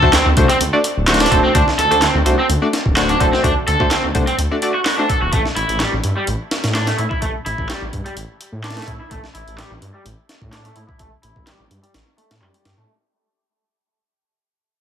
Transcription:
Already playing: overdriven electric guitar A4
0.02 detuned saw bass D2, synth stab A3 D4 F#4 C5, kick
0.13 overdriven electric guitar C4, snare, clap, closed hi-hat
0.26 detuned saw bass D2
0.37 detuned saw bass C2, synth stab A3 D4 F#4 C5, kick, closed hi-hat
0.49 overdriven electric guitar C4, closed hi-hat
0.61 detuned saw bass D2, closed hi-hat
0.73 synth stab A3 D4 F#4 D5
0.84 closed hi-hat
0.97 detuned saw bass D1
1.08 synth stab A3 D4 F#4 C5, overdriven electric guitar F#4, snare, clap, closed hi-hat
1.14 snare, closed hi-hat
1.20 overdriven electric guitar D4, snare, closed hi-hat
1.26 snare, closed hi-hat
1.31 detuned saw bass D1, synth stab A3 D4 F#4 C5, overdriven electric guitar A4, kick, closed hi-hat
1.44 overdriven electric guitar C4
1.55 detuned saw bass D2, synth stab A3 D4 F#4 C5, overdriven electric guitar D4, kick, closed hi-hat
1.68 snare
1.79 detuned saw bass D2, overdriven electric guitar A4, closed hi-hat
1.91 detuned saw bass D2, synth stab A3 D4 F#4 C5, closed hi-hat
2.02 overdriven electric guitar C4, snare, clap, closed hi-hat
2.15 detuned saw bass D2
2.25 detuned saw bass C2, synth stab A3 D4 F#4 C5, closed hi-hat
2.39 overdriven electric guitar C4
2.49 detuned saw bass D2, closed hi-hat
2.62 synth stab A3 D4 F#4 D5
2.73 snare, closed hi-hat
2.85 detuned saw bass D1, kick
2.96 synth stab A3 D4 F#4 C5, overdriven electric guitar F#4, snare, clap, closed hi-hat
3.09 overdriven electric guitar D4, closed hi-hat
3.20 detuned saw bass D1, synth stab A3 D4 F#4 C5, overdriven electric guitar A4, kick, closed hi-hat
3.33 overdriven electric guitar C4, snare
3.44 detuned saw bass D2, synth stab A3 D4 F#4 C5, overdriven electric guitar D4, kick, closed hi-hat
3.67 detuned saw bass D2, overdriven electric guitar A4, closed hi-hat
3.80 detuned saw bass D2, synth stab A3 D4 F#4 C5, kick
3.91 overdriven electric guitar C4, snare, clap, closed hi-hat
4.04 detuned saw bass D2
4.14 detuned saw bass C2, synth stab A3 D4 F#4 C5, kick, closed hi-hat
4.27 overdriven electric guitar C4, closed hi-hat
4.38 detuned saw bass D2, closed hi-hat
4.51 synth stab A3 D4 F#4 D5
4.62 synth stab A3 D4 F#4 D5, closed hi-hat
4.74 overdriven electric guitar F#4
4.85 overdriven electric guitar F#4, snare, clap, open hi-hat
4.98 synth stab A3 D4 F#4 C5, overdriven electric guitar D4
5.09 overdriven electric guitar A4, kick, closed hi-hat
5.22 detuned saw bass D1, overdriven electric guitar F#4
5.33 detuned saw bass A1, overdriven electric guitar A3, kick, closed hi-hat
5.46 snare
5.56 detuned saw bass A1, overdriven electric guitar E4, closed hi-hat
5.69 detuned saw bass A1, closed hi-hat
5.80 overdriven electric guitar G3, snare, clap, closed hi-hat
5.93 detuned saw bass A1
6.04 detuned saw bass G2, closed hi-hat
6.17 overdriven electric guitar G3
6.27 detuned saw bass A1, closed hi-hat
6.51 snare, closed hi-hat
6.64 detuned saw bass A2, snare, closed hi-hat
6.75 overdriven electric guitar D4, snare, clap, closed hi-hat
6.87 overdriven electric guitar A3, snare, closed hi-hat
6.98 detuned saw bass A2, overdriven electric guitar E4, closed hi-hat
7.10 overdriven electric guitar E4, kick
7.22 detuned saw bass A1, overdriven electric guitar A3, kick, closed hi-hat
7.46 detuned saw bass A1, overdriven electric guitar E4, closed hi-hat
7.58 detuned saw bass A1, kick
7.69 overdriven electric guitar G3, snare, clap, closed hi-hat
7.82 detuned saw bass A1
7.93 detuned saw bass G2, kick, closed hi-hat
8.06 overdriven electric guitar G3, closed hi-hat
8.17 detuned saw bass A1, closed hi-hat
8.41 closed hi-hat
8.52 detuned saw bass A2
8.64 overdriven electric guitar D4, snare, clap, closed hi-hat
8.70 snare, closed hi-hat
8.77 overdriven electric guitar A3, snare, closed hi-hat
8.82 snare, closed hi-hat
8.87 detuned saw bass A2, overdriven electric guitar E4, kick, closed hi-hat
9.00 overdriven electric guitar E4
9.11 detuned saw bass A1, overdriven electric guitar A3, kick, closed hi-hat
9.24 snare
9.35 detuned saw bass A1, overdriven electric guitar E4, closed hi-hat
9.47 detuned saw bass A1, closed hi-hat
9.58 overdriven electric guitar G3, snare, clap, closed hi-hat
9.71 detuned saw bass A1
9.82 detuned saw bass G2, closed hi-hat
9.94 overdriven electric guitar G3
10.05 detuned saw bass A1, closed hi-hat
10.29 snare, closed hi-hat
10.41 detuned saw bass A2, kick
10.52 overdriven electric guitar D4, snare, clap, closed hi-hat
10.64 overdriven electric guitar A3, closed hi-hat
10.76 detuned saw bass A2, overdriven electric guitar E4, closed hi-hat
10.89 overdriven electric guitar E4, kick
10.99 detuned saw bass A1, overdriven electric guitar A3, kick, closed hi-hat
11.23 detuned saw bass A1, overdriven electric guitar E4, closed hi-hat
11.36 detuned saw bass A1, kick
11.47 overdriven electric guitar G3, snare, clap, closed hi-hat
11.60 detuned saw bass A1
11.71 detuned saw bass G2, closed hi-hat
11.83 overdriven electric guitar G3, closed hi-hat
11.94 detuned saw bass A1, snare, closed hi-hat
12.18 overdriven electric guitar A3, closed hi-hat
12.31 detuned saw bass A2, snare, closed hi-hat
12.41 detuned saw bass F#2, overdriven electric guitar G3, clap
12.54 overdriven electric guitar G3, closed hi-hat
12.65 detuned saw bass G2, overdriven electric guitar G4, snare, closed hi-hat
12.78 detuned saw bass A2, overdriven electric guitar A3

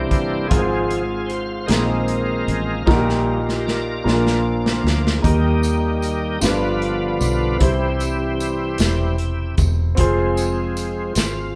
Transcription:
Already playing: fingered electric bass C2, grand piano C3 C4 E4 G4 A#4, tonewheel organ E3 G3 A#3 D4
0.09 fingered electric bass G1, tonewheel organ C5, kick, closed hi-hat
0.48 fingered electric bass G#1, grand piano G#2 C4 F4 G#4, tonewheel organ F3 G#3 C4 F4 G#4, kick, closed hi-hat
0.52 grand piano A#4
0.58 grand piano C5
0.91 closed hi-hat
1.26 tonewheel organ C5, closed hi-hat
1.61 tonewheel organ C5
1.66 fingered electric bass A#1, tonewheel organ D#3 G#3 C4 F4 A#4, grand piano A#3 C4 D#4, closed hi-hat
1.70 grand piano G#4 A#4, snare
2.08 closed hi-hat
2.48 fingered electric bass A1, closed hi-hat
2.86 fingered electric bass A#1, grand piano A#2 A#3 D#4 F#4 A#4, tonewheel organ D#3 G3 A#3, kick, snare
2.94 grand piano G4
3.09 snare
3.49 snare
3.58 tonewheel organ G4
3.67 tonewheel organ A#3 F4 D5, snare
4.04 fingered electric bass A#1, grand piano A#2 A#3 D4 F4 G#4, tonewheel organ F3 A#3, snare
4.13 grand piano A#4
4.27 snare
4.66 snare
4.84 fingered electric bass D2, snare
5.07 snare
5.18 tonewheel organ G#4
5.22 fingered electric bass D#2, grand piano D#3 A#3 D#4 G4 A#4, tonewheel organ D#3 G3 A#3 D#4 G4, kick, closed hi-hat
5.63 closed hi-hat, tambourine
6.02 closed hi-hat, tambourine
6.41 fingered electric bass G1, grand piano G2 D4 F4 G4 B4, tonewheel organ D3 F3 B3 D4 F4 B4, snare, closed hi-hat, tambourine
6.82 closed hi-hat
7.21 fingered electric bass B1, closed hi-hat, tambourine
7.58 fingered electric bass C2, grand piano C3 C4 E4 G4, tonewheel organ E3, kick, closed hi-hat
7.62 tonewheel organ G3 C4 E4 G4, grand piano C5
8.00 closed hi-hat, tambourine
8.40 closed hi-hat, tambourine
8.78 fingered electric bass E1, tonewheel organ E3 G3, snare, closed hi-hat, tambourine
8.82 tonewheel organ C4
9.18 closed hi-hat
9.58 fingered electric bass E1, kick, closed hi-hat, tambourine
9.95 fingered electric bass F1, tonewheel organ F3 G#3, grand piano C4 F4 G#4, kick, closed hi-hat
9.99 tonewheel organ C4, grand piano C5
10.37 closed hi-hat, tambourine
10.77 closed hi-hat, tambourine
11.15 fingered electric bass G#1, tonewheel organ F4, snare, closed hi-hat, tambourine

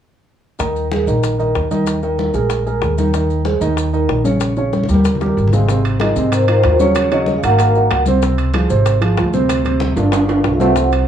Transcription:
0.59 upright bass D#2, grand piano D#3 D#4 D#5, high bongo, high conga, maracas
0.76 high conga, maracas
0.91 grand piano G#3 G#4 A#4, high bongo, high conga, maracas
1.07 upright bass A#1, grand piano D#3 D#4 D#5, high conga, maracas
1.23 high bongo, high conga, maracas
1.39 grand piano D#3 D#4 D#5, high conga, maracas
1.55 upright bass D#2, high bongo, low bongo, high conga, maracas
1.71 grand piano D#3 D#4 D#5, high conga, maracas
1.87 high bongo, maracas
2.03 grand piano D#3 D#4 D#5, high bongo, high conga, maracas
2.19 high bongo, high conga, maracas
2.34 upright bass A#1, grand piano G#3 G#4 A#4, high bongo, maracas
2.50 high bongo, high conga, maracas
2.66 grand piano G#3 G#4 A#4, high conga, maracas
2.82 upright bass D#2, high bongo, low bongo, high conga, maracas
2.98 grand piano D#3 D#4 D#5, high bongo, high conga, maracas
3.14 grand piano D#3 D#4 D#5, high bongo, maracas
3.30 high conga, maracas
3.45 grand piano G#3 G#4 C5, high bongo, high conga, maracas
3.61 upright bass D#2, grand piano D#3 D#4 D#5, high conga, maracas
3.77 high bongo, high conga, maracas
3.93 grand piano D#3 D#4 D#5, high conga, maracas
4.09 upright bass A#1, high bongo, low bongo, high conga, maracas
4.25 grand piano C#3 C#4 C#5, high conga, maracas
4.40 high bongo, high conga, maracas
4.56 grand piano C#3 C#4 C#5, high bongo, high conga, maracas
4.73 high bongo, high conga, maracas
4.84 high conga
4.89 upright bass D#2, grand piano G3 G4 A#4, high bongo, maracas
4.94 high conga
5.04 high bongo, low conga, maracas
5.15 low conga
5.21 grand piano G3 G4 A#4, high bongo, maracas
5.26 low conga
5.37 upright bass G#1, maracas
5.47 low conga
5.52 grand piano C3 C4 C5, trombone G#3, vibraphone F5, low bongo, maracas
5.58 low conga
5.68 grand piano C3 C4 C5, high bongo, high conga, maracas
5.84 high conga, high timbale, maracas
6.00 grand piano D#3 D#4 F4, trombone G#3, vibraphone D#5, high bongo, high conga, high timbale, maracas
6.16 upright bass G#2, grand piano C3 C4 C5, high conga, maracas
6.32 trombone D#3, vibraphone C5, high bongo, high conga, high timbale, maracas
6.47 grand piano D#3 D#4 F4, trombone D#3, vibraphone C5, high conga, high timbale, maracas
6.63 upright bass D#2, high bongo, low bongo, high conga, high timbale, low timbale, maracas
6.79 grand piano C#3 C#4 C#5, trombone F#3, vibraphone C#5, high conga, maracas
6.95 high bongo, high conga, high timbale, maracas
7.11 grand piano C#3 C#4 C#5, trombone F#3, vibraphone D#5, high bongo, high conga, high timbale, maracas
7.26 high bongo, high conga, maracas
7.37 trombone G#3, vibraphone F5
7.43 upright bass G#1, grand piano D#3 D#4 F#4, trombone A#3, vibraphone F#5, high bongo, high timbale, maracas
7.58 high bongo, high conga, high timbale, maracas
7.75 grand piano D#3 D#4 F#4, high conga, maracas
7.90 upright bass C#2, high bongo, low bongo, high conga, high timbale, maracas
8.06 grand piano C3 C4 C5, high bongo, high conga, maracas
8.22 grand piano C3 C4 C5, high bongo, high conga, maracas
8.38 high conga, high timbale, maracas
8.54 grand piano F3 F4 G#4, high bongo, high conga, high timbale, maracas
8.70 upright bass G#1, grand piano C3 C4 C5, high conga, maracas
8.86 high bongo, high conga, high timbale, maracas
9.01 grand piano F3 F4 G#4, high conga, high timbale, maracas
9.17 upright bass D2, high bongo, low bongo, high conga, high timbale, low timbale, maracas
9.34 grand piano C3 C4 C5, high conga, maracas
9.49 high bongo, high conga, high timbale, maracas
9.65 grand piano C3 C4 C5, high bongo, high conga, high timbale, maracas
9.80 high bongo, high conga, maracas
9.97 upright bass G1, grand piano D3 D4 F4, high bongo, high timbale, maracas
10.12 high bongo, high conga, high timbale, maracas
10.28 grand piano D3 D4 F4, high conga, high timbale, maracas
10.44 upright bass C2, high bongo, low bongo, high conga, low timbale, maracas
10.53 trombone A3, vibraphone F5
10.60 grand piano C3 C4 C5, trombone A3, vibraphone F#5, high bongo, high conga, low timbale, maracas
10.76 grand piano C3 C4 C5, high bongo, high conga, maracas
10.92 high conga, high timbale, maracas

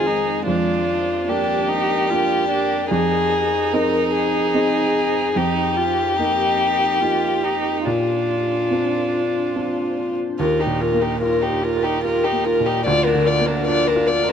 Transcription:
Already playing: upright piano F2 C4 D#4 G#4, ambient pad D#3 G#3 C5, violin G#4
0.07 viola D#4
0.46 upright piano F2, viola D4, violin F4, ambient pad G4 A#4 D5
1.28 upright piano A#3 D4 G4, viola D4, violin G4
1.69 viola D#4
2.10 upright piano A#3 D4 G4, viola F4
2.50 viola D4
2.91 upright piano F2, ambient pad D#4 G#4 C5, viola D#4, violin G#4
3.73 upright piano C4 D#4 G#4, violin A#4
4.15 violin G#4
4.54 upright piano C4 D#4 G#4
5.36 upright piano F2, viola D#4, violin G4, ambient pad G4 A#4
5.77 viola F4
6.19 upright piano A#3 D#4 G4, viola D#4
7.01 upright piano A#3 D#4 G4, viola F4
7.44 viola D#4
7.86 upright piano A#2, viola D4, ambient pad D4 F4 C5, violin F4
8.71 upright piano C4 D4 F4
9.56 upright piano C4 D4 F4
10.39 upright piano D#2, ambient pad D#4 F4 A#4, viola F4, violin A#4
10.60 viola D#4, violin G4
10.66 upright piano A#2
10.81 viola F4, violin A#4
10.94 upright piano A#3
11.01 viola D#4, violin G4
11.21 upright piano F4, viola F4, violin A#4
11.42 viola D#4, violin G4
11.49 upright piano G4
11.63 viola F4, violin A#4
11.77 upright piano A#4
11.83 viola D#4, violin G4
12.04 viola F4, upright piano G4, violin A#4
12.23 viola D#4, violin G4
12.32 upright piano A#3
12.44 viola F4, violin A#4
12.60 upright piano A#2
12.66 viola D#4, violin G4
12.86 upright piano D2, ambient pad D4, viola F4, violin D5
13.04 viola D4, violin A#4
13.14 upright piano D3
13.26 viola F4, violin D5
13.41 upright piano A#3
13.46 viola D4, violin A#4
13.67 upright piano D4, viola F4, violin D5
13.87 viola D4, violin A#4
13.96 upright piano F4
14.07 viola F4, violin D5
14.23 upright piano A#4
14.29 viola D4, violin A#4

